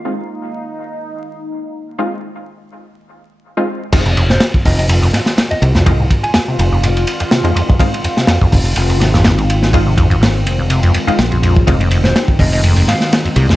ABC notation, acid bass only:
X:1
M:4/4
L:1/16
Q:"Swing 16ths" 1/4=124
K:Fm
V:1 name="Acid bass" clef=bass
z16 | z16 | C, F,, F,, A,, z2 F,, C, F,, F,, A,, z2 F,, C, F,, | F,, A,, z2 F,, C, F,, F,, A,, z2 F,, C, F,, F,, A,, |
z2 F,, C, F,, F,, A,, z2 F,, C, F,, F,, A,, z2 | F,, C, F,, F,, A,, z2 F,, C, F,, F,, F,, z F,, F,, E,, | C, F,, F,, A,, z2 F,, C, F,, F,, A,, z2 F,, C, F,, |]